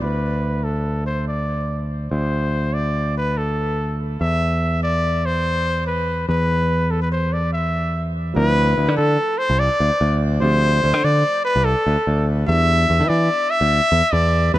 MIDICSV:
0, 0, Header, 1, 4, 480
1, 0, Start_track
1, 0, Tempo, 416667
1, 28, Time_signature, 5, 2, 24, 8
1, 9147, Tempo, 412088
1, 16888, End_track
2, 0, Start_track
2, 0, Title_t, "Trumpet"
2, 0, Program_c, 0, 56
2, 23, Note_on_c, 0, 71, 70
2, 737, Note_on_c, 0, 69, 62
2, 754, Note_off_c, 0, 71, 0
2, 1220, Note_off_c, 0, 69, 0
2, 1227, Note_on_c, 0, 72, 66
2, 1451, Note_off_c, 0, 72, 0
2, 1475, Note_on_c, 0, 74, 70
2, 2148, Note_off_c, 0, 74, 0
2, 2438, Note_on_c, 0, 72, 75
2, 3154, Note_on_c, 0, 74, 74
2, 3172, Note_off_c, 0, 72, 0
2, 3635, Note_off_c, 0, 74, 0
2, 3656, Note_on_c, 0, 71, 75
2, 3889, Note_on_c, 0, 69, 70
2, 3906, Note_off_c, 0, 71, 0
2, 4603, Note_off_c, 0, 69, 0
2, 4852, Note_on_c, 0, 76, 86
2, 5519, Note_off_c, 0, 76, 0
2, 5568, Note_on_c, 0, 74, 83
2, 6056, Note_on_c, 0, 72, 92
2, 6073, Note_off_c, 0, 74, 0
2, 6756, Note_off_c, 0, 72, 0
2, 6763, Note_on_c, 0, 71, 76
2, 7206, Note_off_c, 0, 71, 0
2, 7247, Note_on_c, 0, 71, 84
2, 7962, Note_on_c, 0, 69, 61
2, 7979, Note_off_c, 0, 71, 0
2, 8078, Note_off_c, 0, 69, 0
2, 8087, Note_on_c, 0, 71, 65
2, 8192, Note_off_c, 0, 71, 0
2, 8202, Note_on_c, 0, 72, 70
2, 8445, Note_on_c, 0, 74, 69
2, 8462, Note_off_c, 0, 72, 0
2, 8671, Note_off_c, 0, 74, 0
2, 8678, Note_on_c, 0, 76, 71
2, 9347, Note_off_c, 0, 76, 0
2, 9633, Note_on_c, 0, 71, 96
2, 10307, Note_off_c, 0, 71, 0
2, 10348, Note_on_c, 0, 69, 89
2, 10827, Note_on_c, 0, 72, 95
2, 10844, Note_off_c, 0, 69, 0
2, 11076, Note_on_c, 0, 74, 95
2, 11094, Note_off_c, 0, 72, 0
2, 11796, Note_off_c, 0, 74, 0
2, 12024, Note_on_c, 0, 72, 100
2, 12765, Note_on_c, 0, 74, 101
2, 12782, Note_off_c, 0, 72, 0
2, 13226, Note_off_c, 0, 74, 0
2, 13233, Note_on_c, 0, 71, 94
2, 13465, Note_on_c, 0, 69, 89
2, 13483, Note_off_c, 0, 71, 0
2, 14189, Note_off_c, 0, 69, 0
2, 14428, Note_on_c, 0, 76, 102
2, 15142, Note_on_c, 0, 74, 98
2, 15160, Note_off_c, 0, 76, 0
2, 15629, Note_on_c, 0, 76, 120
2, 15646, Note_off_c, 0, 74, 0
2, 16358, Note_on_c, 0, 74, 95
2, 16376, Note_off_c, 0, 76, 0
2, 16829, Note_off_c, 0, 74, 0
2, 16836, Note_on_c, 0, 71, 92
2, 16888, Note_off_c, 0, 71, 0
2, 16888, End_track
3, 0, Start_track
3, 0, Title_t, "Grand piano"
3, 0, Program_c, 1, 0
3, 9608, Note_on_c, 1, 53, 53
3, 9621, Note_on_c, 1, 57, 48
3, 9632, Note_on_c, 1, 60, 51
3, 9642, Note_on_c, 1, 64, 63
3, 11977, Note_off_c, 1, 53, 0
3, 11983, Note_off_c, 1, 57, 0
3, 11989, Note_off_c, 1, 60, 0
3, 11994, Note_off_c, 1, 64, 0
3, 12007, Note_on_c, 1, 53, 53
3, 12020, Note_on_c, 1, 57, 52
3, 12031, Note_on_c, 1, 60, 51
3, 12040, Note_on_c, 1, 67, 58
3, 14373, Note_off_c, 1, 53, 0
3, 14379, Note_off_c, 1, 57, 0
3, 14385, Note_off_c, 1, 60, 0
3, 14389, Note_off_c, 1, 67, 0
3, 14409, Note_on_c, 1, 55, 57
3, 14418, Note_on_c, 1, 59, 53
3, 14431, Note_on_c, 1, 62, 55
3, 14443, Note_on_c, 1, 64, 61
3, 16772, Note_off_c, 1, 55, 0
3, 16776, Note_off_c, 1, 59, 0
3, 16782, Note_off_c, 1, 62, 0
3, 16789, Note_off_c, 1, 64, 0
3, 16813, Note_on_c, 1, 55, 58
3, 16822, Note_on_c, 1, 59, 53
3, 16832, Note_on_c, 1, 62, 48
3, 16845, Note_on_c, 1, 64, 65
3, 16888, Note_off_c, 1, 55, 0
3, 16888, Note_off_c, 1, 59, 0
3, 16888, Note_off_c, 1, 62, 0
3, 16888, Note_off_c, 1, 64, 0
3, 16888, End_track
4, 0, Start_track
4, 0, Title_t, "Picked electric bass"
4, 0, Program_c, 2, 34
4, 27, Note_on_c, 2, 38, 63
4, 2386, Note_off_c, 2, 38, 0
4, 2436, Note_on_c, 2, 38, 69
4, 4793, Note_off_c, 2, 38, 0
4, 4847, Note_on_c, 2, 40, 64
4, 7195, Note_off_c, 2, 40, 0
4, 7242, Note_on_c, 2, 40, 72
4, 9587, Note_off_c, 2, 40, 0
4, 9640, Note_on_c, 2, 38, 106
4, 10065, Note_off_c, 2, 38, 0
4, 10122, Note_on_c, 2, 38, 76
4, 10247, Note_off_c, 2, 38, 0
4, 10247, Note_on_c, 2, 50, 75
4, 10348, Note_off_c, 2, 50, 0
4, 10362, Note_on_c, 2, 50, 72
4, 10572, Note_off_c, 2, 50, 0
4, 10959, Note_on_c, 2, 36, 74
4, 11171, Note_off_c, 2, 36, 0
4, 11317, Note_on_c, 2, 38, 83
4, 11423, Note_off_c, 2, 38, 0
4, 11558, Note_on_c, 2, 38, 94
4, 11984, Note_off_c, 2, 38, 0
4, 12037, Note_on_c, 2, 38, 97
4, 12463, Note_off_c, 2, 38, 0
4, 12522, Note_on_c, 2, 38, 79
4, 12638, Note_off_c, 2, 38, 0
4, 12638, Note_on_c, 2, 50, 77
4, 12743, Note_off_c, 2, 50, 0
4, 12761, Note_on_c, 2, 50, 82
4, 12972, Note_off_c, 2, 50, 0
4, 13359, Note_on_c, 2, 36, 71
4, 13570, Note_off_c, 2, 36, 0
4, 13720, Note_on_c, 2, 38, 85
4, 13824, Note_off_c, 2, 38, 0
4, 13960, Note_on_c, 2, 38, 87
4, 14384, Note_off_c, 2, 38, 0
4, 14437, Note_on_c, 2, 40, 100
4, 14862, Note_off_c, 2, 40, 0
4, 14922, Note_on_c, 2, 40, 75
4, 15039, Note_on_c, 2, 52, 80
4, 15056, Note_off_c, 2, 40, 0
4, 15143, Note_off_c, 2, 52, 0
4, 15154, Note_on_c, 2, 52, 85
4, 15367, Note_off_c, 2, 52, 0
4, 15751, Note_on_c, 2, 38, 83
4, 15965, Note_off_c, 2, 38, 0
4, 16110, Note_on_c, 2, 40, 85
4, 16217, Note_off_c, 2, 40, 0
4, 16354, Note_on_c, 2, 40, 95
4, 16780, Note_off_c, 2, 40, 0
4, 16834, Note_on_c, 2, 40, 106
4, 16888, Note_off_c, 2, 40, 0
4, 16888, End_track
0, 0, End_of_file